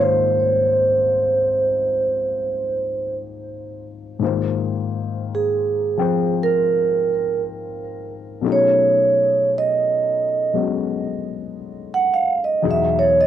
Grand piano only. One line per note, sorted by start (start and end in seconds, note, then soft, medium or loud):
0.00 4.18 G#2 soft
0.00 4.23 C3 soft
0.00 4.19 D#3 soft
0.00 4.24 F3 soft
0.00 4.20 A#3 soft
0.00 4.21 F4 soft
0.00 4.24 G4 soft
0.00 4.22 C5 soft
0.00 4.23 D#5 soft
4.19 8.43 G#2 soft
4.19 8.43 D#3 soft
4.19 8.44 A#3 soft
4.19 8.44 F4 soft
4.24 6.00 C5 soft
5.97 8.44 F3 soft
5.97 8.44 C4 soft
5.97 8.45 C5 soft
5.97 8.44 G5 soft
8.41 12.61 B2 soft
8.41 10.52 F#3 soft
8.41 12.64 A3 soft
8.41 10.54 C#4 soft
8.46 12.62 D#4 soft
8.46 12.62 G#4 soft
10.53 12.62 F#3 soft
10.53 12.64 G#3 soft
10.53 12.64 B3 soft
10.53 12.64 C#4 soft
10.53 12.65 F#4 soft
12.62 13.27 E2 soft
12.62 13.27 B2 soft
12.62 13.27 F#3 soft
12.62 13.27 D#4 soft
12.62 13.27 G#4 medium